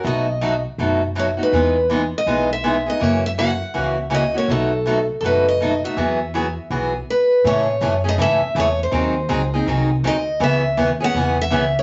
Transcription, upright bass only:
X:1
M:4/4
L:1/8
Q:"Swing" 1/4=162
K:E
V:1 name="Upright bass" clef=bass
B,,,4 F,,,4 | E,,4 B,,,4 | F,,4 C,,4 | B,,,4 F,,,4 |
E,,4 B,,,2 z2 | A,,2 F,,2 G,, z E,,2 | D,,2 C,,2 ^B,,,2 =D,,2 | C,,2 D,,2 E,,2 C,,2 |]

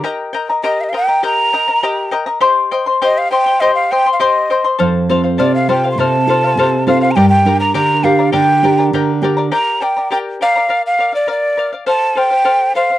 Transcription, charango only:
X:1
M:2/4
L:1/16
Q:1/4=102
K:Gm
V:1 name="Charango"
[GBegb]2 [Begb] [Beb] [GBegb]2 [Begb] [Beb] | [GBegb]2 [Begb] [Beb] [GBegb]2 [Begb] [Beb] | [Gcegc']2 [cegc'] [cec'] [Gcegc']2 [cegc'] [cec'] | [Gcegc']2 [cegc'] [cec'] [Gcegc']2 [cegc'] [cec'] |
[Acf]2 [Acf] [cf] [Acf]2 [Acf] [cf] | [Acf]2 [Acf] [cf] [Acf]2 [Acf] [cf] | [GBdgb]2 [Bdgb] [Bdb] [GBdgb]2 [Bdgb] [Bdb] | [GBdgb]2 [Bdgb] [Bdb] [GBdgb]2 [Bdgb] [Bdb] |
[GBdgb]2 [Bdgb] [Bdb] [GBdgb]2 [Bdgb] [Bdb] | [Bdf]2 [Bdf] [df] [Bdf]2 [Bdf] [df] | [Acf]2 [Acf] [cf] [Acf]2 [Acf] [cf] |]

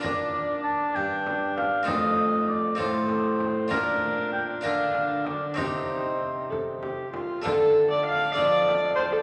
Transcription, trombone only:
X:1
M:6/8
L:1/8
Q:3/8=65
K:Bb
V:1 name="Trombone" clef=bass
B,,2 z G,,3 | F,,3 A,,3 | B,,3 D,3 | C,4- C, z |
D,3 F,,3 |]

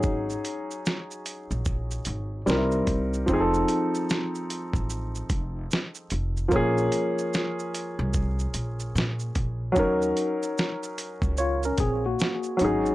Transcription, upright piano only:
X:1
M:4/4
L:1/8
Q:"Swing 16ths" 1/4=74
K:Ebdor
V:1 name="Upright piano"
[G,DEA]6 [=G,CE=EB]2 | [F,CEA=A]8 | [F,B,DA]8 | [G,DEB]6- [G,DEB] [G,DEA] |]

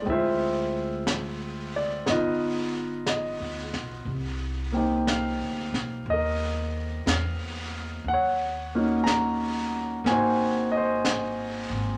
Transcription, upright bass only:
X:1
M:4/4
L:1/8
Q:"Swing" 1/4=60
K:Cdor
V:1 name="Upright bass" clef=bass
D,,4 G,,,2- (3G,,, D,, =B,,, | C,,2- (3C,, D,, =B,,, E,,2 =E,,2 | E,,4 _A,,,3 A,,, |]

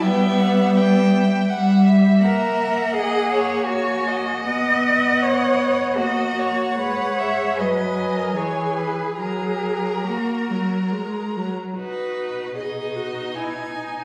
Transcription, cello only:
X:1
M:3/4
L:1/16
Q:1/4=78
K:Em
V:1 name="Cello"
B,6 z6 | [K:B] A4 G4 F4 | d4 c4 F4 | c4 B3 A G4 |
G4 F4 z4 | B,,12 |]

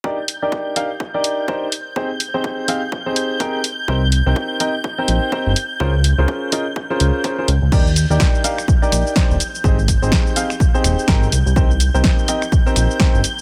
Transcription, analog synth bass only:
X:1
M:4/4
L:1/16
Q:"Swing 16ths" 1/4=125
K:Eb
V:1 name="Analog synth bass" clef=bass
z16 | z16 | C,,3 C,, z6 B,,, z2 G,,, z2 | _D,,3 D,, z6 D,, z3 D,, D,, |
E,,3 E,, z6 B,,, z2 E,,, z2 | A,,,3 A,,, z6 E,,, z A,,,2 C,, C,, | C,,3 C,, z6 B,,, z2 G,,, z2 |]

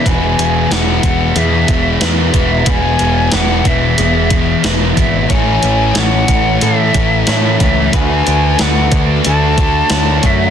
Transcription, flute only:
X:1
M:4/4
L:1/8
Q:1/4=91
K:Emix
V:1 name="Flute"
g2 f2 e3 e | g2 f e3 z e | g2 f2 e3 e | g2 f z a3 e |]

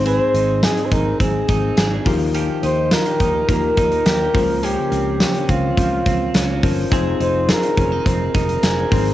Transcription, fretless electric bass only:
X:1
M:4/4
L:1/16
Q:1/4=105
K:Bbdor
V:1 name="Fretless electric bass" clef=bass
A,,,2 A,,,3 z A,,,2 A,,,2 A,,,2 A,,,2 E,,2- | E,,2 E,,3 z E,,2 E,,2 E,,2 E,,2 D,,2- | D,,2 D,,3 z D,,2 D,,2 D,,2 D,,2 G,,,2 | F,,,2 F,,,3 z F,,,2 F,,,2 F,,,2 F,,,2 A,,,2 |]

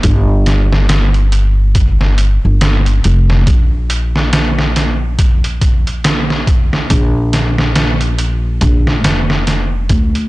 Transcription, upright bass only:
X:1
M:4/4
L:1/16
Q:"Swing 16ths" 1/4=70
K:Bb
V:1 name="Upright bass" clef=bass
G,,,8- G,,,3 G,,,3 F,,,2 | B,,,16 | B,,,8 B,,,2 F,,,4 D,,2 |]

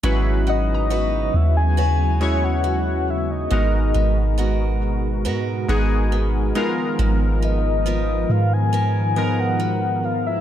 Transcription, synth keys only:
X:1
M:4/4
L:1/8
Q:1/4=69
K:G#m
V:1 name="Synth keys"
[G,CEFB]3 z2 [G,CEFc]2 z | [G,B,DFA]3 z2 [G,B,DFG]2 [G,B,D^EA]- | [G,B,D^EA]2 z3 [^E,G,B,DA]2 z |]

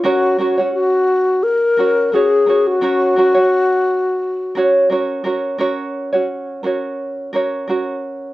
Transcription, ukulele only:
X:1
M:4/4
L:1/16
Q:"Swing 16ths" 1/4=86
K:F#
V:1 name="Ukulele"
[CFAc]2 [CFAc] [CFc]6- [CFc] [CFAc]2 [CFAc]2 [CFAc]2 | [CFAc]2 [CFAc] [CFc]6- [CFc] [CFAc]2 [CFAc]2 [CFAc]2 | [CFAc]3 [CFc]3 [CFAc]4 [CFAc]2 [CFAc]4 |]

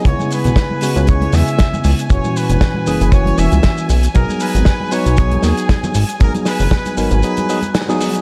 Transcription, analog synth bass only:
X:1
M:4/4
L:1/16
Q:"Swing 16ths" 1/4=117
K:C#dor
V:1 name="Analog synth bass" clef=bass
C,, z2 B,,, z3 C,,2 z E,, z3 C,, z | F,,, z2 E,,, z2 F,,, F,,,2 z E,,, C,, z2 B,,, z | B,,, z2 G,,, z3 B,,,2 z D,, z3 G,,, z | G,,, z2 F,,, z2 G,,, G,,, z8 |]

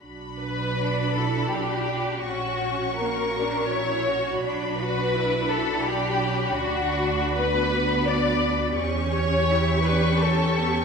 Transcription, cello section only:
X:1
M:3/4
L:1/8
Q:1/4=83
K:Bm
V:1 name="Cello section"
z2 D E D2 | C2 ^A, D E F | D F E2 D C | D2 B,4 |
C2 E D C B, |]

